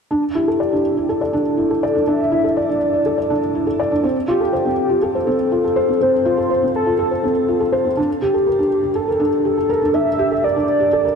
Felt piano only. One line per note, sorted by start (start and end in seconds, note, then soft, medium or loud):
0.11 0.22 D4 medium
0.35 0.47 E4 medium
0.48 0.59 A4 medium
0.60 0.72 D5 medium
0.72 0.79 D4 medium
0.97 1.04 E4 medium
1.09 1.21 A4 medium
1.21 1.33 D5 medium
1.33 1.40 D4 medium
1.57 1.70 E4 medium
1.70 1.82 A4 medium
1.83 1.95 D5 medium
1.95 2.02 D4 medium
2.07 2.19 D4 medium
2.32 2.44 E4 medium
2.44 2.56 A4 medium
2.57 2.68 D5 medium
2.69 2.76 D4 medium
2.94 3.01 E4 medium
3.06 3.17 A4 medium
3.18 3.30 D5 medium
3.30 3.37 D4 medium
3.55 3.67 E4 medium
3.67 3.79 A4 medium
3.80 3.91 D5 medium
3.91 3.99 D4 medium
4.03 4.15 C4 medium
4.28 4.40 F4 medium
4.41 4.52 A4 medium
4.53 4.65 C5 medium
4.65 4.72 C4 medium
4.90 4.97 F4 medium
5.02 5.14 A4 medium
5.15 5.27 C5 medium
5.27 5.34 C4 medium
5.52 5.63 F4 medium
5.64 5.76 A4 medium
5.76 5.88 C5 medium
5.89 5.96 C4 medium
6.01 6.13 C4 medium
6.25 6.37 F4 medium
6.37 6.49 A4 medium
6.50 6.62 C5 medium
6.62 6.69 C4 medium
6.86 6.94 F4 medium
6.99 7.11 A4 medium
7.11 7.23 C5 medium
7.23 7.31 C4 medium
7.48 7.60 F4 medium
7.60 7.72 A4 medium
7.72 7.84 C5 medium
7.85 7.92 C4 medium
7.97 8.09 D4 medium
8.22 8.34 G4 medium
8.34 8.46 A4 medium
8.47 8.58 A#4 medium
8.59 8.66 D4 medium
8.83 8.90 G4 medium
8.95 9.07 A4 medium
9.08 9.20 A#4 medium
9.20 9.27 D4 medium
9.45 9.57 G4 medium
9.57 9.69 A4 medium
9.69 9.81 A#4 medium
9.82 9.89 D4 medium
9.94 10.06 D4 medium
10.19 10.31 G4 medium
10.31 10.43 A4 medium
10.44 10.55 A#4 medium
10.56 10.63 D4 medium
10.80 10.87 G4 medium
10.93 11.04 A4 medium
11.05 11.15 A#4 medium